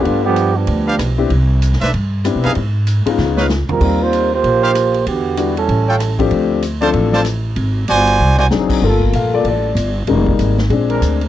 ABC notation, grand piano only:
X:1
M:4/4
L:1/8
Q:"Swing" 1/4=192
K:Gm
V:1 name="Grand piano"
[A,=B,DFG]2 z4 z [B,CD=EG] | z6 [=B,CD=EG]2 | z3 [_A,_C^CEF]3 z2 | [G,B,CEF]3 z4 z |
z2 [G,=B,D=E^F] z4 [=F,A,CDG]- | [F,A,CDG]2 z [F,A,CDA]3 z2 | z6 [_G,CDE_A]2 | z2 f d d3 z |
z8 |]
V:2 name="Grand piano"
z8 | z8 | z8 | z8 |
z8 | z8 | z8 | [A,B,F]3 [A,B,F] z4 |
[G,_A,B,E]3 z [A,CD]3 z |]